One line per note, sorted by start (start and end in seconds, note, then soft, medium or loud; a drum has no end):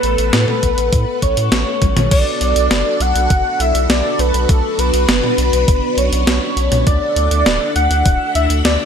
0.00 0.16 A1 medium
0.00 2.07 A3 medium
0.00 2.07 A4 medium
0.00 1.18 B4 loud
0.00 2.08 B4 medium
0.00 2.09 F#5 medium
0.00 closed hi-hat medium
0.18 0.31 A1 medium
0.18 closed hi-hat medium
0.33 0.46 A2 loud
0.33 snare loud
0.33 closed hi-hat medium
0.48 mid tom medium
0.63 0.76 A1 medium
0.63 kick medium
0.63 closed hi-hat medium
0.78 0.90 A1 medium
0.78 closed hi-hat medium
0.93 1.05 A2 loud
0.93 kick loud
0.93 closed hi-hat medium
1.22 1.35 A1 medium
1.22 2.08 C#5 loud
1.22 kick medium
1.22 closed hi-hat medium
1.37 1.50 A2 medium
1.37 closed hi-hat medium
1.52 1.65 A1 loud
1.52 snare loud
1.52 closed hi-hat medium
1.82 1.94 A1 loud
1.82 kick loud
1.82 closed hi-hat medium
1.82 high tom medium
1.97 2.09 A1 medium
1.97 closed hi-hat medium
1.97 mid tom medium
2.11 2.24 B1 loud
2.11 6.83 B3 medium
2.11 6.83 D4 medium
2.11 6.83 F#4 medium
2.11 4.47 A4 medium
2.11 3.03 D5 loud
2.11 kick loud
2.11 closed hi-hat loud
2.11 crash loud
2.41 2.54 B1 medium
2.41 closed hi-hat medium
2.56 2.69 B1 medium
2.56 closed hi-hat medium
2.71 2.83 F#1 loud
2.71 snare loud
2.71 closed hi-hat medium
3.00 3.13 B1 medium
3.00 3.62 F#5 loud
3.00 closed hi-hat medium
3.15 3.28 B1 medium
3.15 closed hi-hat medium
3.30 3.43 F#1 loud
3.30 kick loud
3.30 closed hi-hat loud
3.60 3.72 B1 loud
3.60 3.89 E5 loud
3.60 closed hi-hat medium
3.75 3.87 B1 medium
3.75 closed hi-hat medium
3.89 4.02 B1 loud
3.89 4.21 D5 loud
3.89 snare loud
3.89 closed hi-hat medium
4.19 4.32 B1 loud
4.19 4.51 B4 loud
4.19 closed hi-hat medium
4.34 4.47 B1 medium
4.34 closed hi-hat medium
4.49 4.62 B1 loud
4.49 4.81 A4 loud
4.49 6.84 B4 medium
4.49 kick loud
4.49 closed hi-hat medium
4.79 4.91 B1 medium
4.79 5.99 B4 loud
4.79 closed hi-hat medium
4.94 5.06 B1 medium
4.94 closed hi-hat medium
5.08 5.21 F#1 loud
5.08 snare loud
5.08 closed hi-hat medium
5.24 mid tom medium
5.38 5.51 B1 medium
5.38 closed hi-hat medium
5.53 5.65 B1 medium
5.53 closed hi-hat medium
5.68 5.80 F#1 loud
5.68 kick loud
5.68 closed hi-hat medium
5.97 6.10 B1 medium
5.97 6.86 C#5 loud
5.97 closed hi-hat medium
6.12 6.25 B1 medium
6.12 closed hi-hat medium
6.27 6.40 B1 loud
6.27 snare loud
6.27 closed hi-hat loud
6.57 6.69 B1 medium
6.57 closed hi-hat medium
6.72 6.84 B1 medium
6.72 closed hi-hat medium
6.72 mid tom medium
6.87 6.99 D2 loud
6.87 8.85 D4 medium
6.87 8.85 A4 medium
6.87 7.72 D5 loud
6.87 8.85 E5 medium
6.87 8.85 F#5 medium
6.87 kick loud
6.87 closed hi-hat medium
7.16 7.29 D2 medium
7.16 closed hi-hat medium
7.31 7.44 D2 medium
7.31 closed hi-hat medium
7.46 7.59 D1 loud
7.46 snare loud
7.46 closed hi-hat medium
7.76 7.88 D2 medium
7.76 8.31 F#5 loud
7.76 closed hi-hat medium
7.91 8.03 D2 medium
7.91 closed hi-hat medium
8.06 8.18 D1 loud
8.06 kick loud
8.06 closed hi-hat loud
8.35 8.48 D2 medium
8.35 8.49 E5 loud
8.35 closed hi-hat medium
8.50 8.63 D2 medium
8.50 closed hi-hat medium
8.65 8.77 D2 loud
8.65 8.85 D5 loud
8.65 snare loud
8.65 closed hi-hat medium